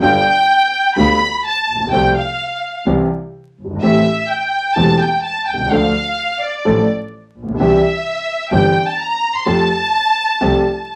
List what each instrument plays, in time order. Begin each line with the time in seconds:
0.02 grand piano G1 G2 D3 G3 B3 F4, double bass G1, violin section G5
0.96 double bass D2, grand piano D2 D3 G3 B3 F4, violin section B5
1.45 violin section A5
1.67 double bass A#1
1.75 grand piano A1
1.80 grand piano A#1
1.87 grand piano B1, double bass C2
1.92 grand piano C2 C3 F3 A3 C4 A4, violin section G5
2.16 violin section F5
2.86 double bass C2, grand piano C2 C3 E3 G3 C4 G4
3.59 double bass G1
3.65 grand piano F#1
3.70 grand piano G1
3.76 grand piano G#1
3.82 grand piano A1 A2 E3 A3 C4 G4, double bass A1, violin section E5
4.30 violin section G5
4.76 grand piano E1 E2 E3 A3 C4 G4, double bass E1, violin section A5
5.00 violin section G5
5.24 violin section A5
5.48 double bass C2, violin section G5
5.54 grand piano B1
5.60 grand piano C2
5.66 grand piano C#2
5.71 double bass D2, grand piano D2 D3 F3 A3 D4 A4, violin section F5
6.42 violin section D5
6.65 grand piano A1 A2 F3 A3 D4 A4, double bass A1
7.36 double bass A#1
7.43 grand piano A1
7.48 grand piano A#1
7.54 grand piano B1
7.58 double bass C2, grand piano C2 C3 E3 C4 D4 G4, violin section E5
8.51 double bass G1, grand piano G1 G2 E3 C4 D4 G4, violin section G5
8.87 violin section A5
9.00 violin section A#5
9.34 violin section C6
9.46 double bass F2, grand piano F2 F3 A3 C4 G4, violin section A5
10.41 grand piano C2 C3 F3 A3 C4 G4, double bass C2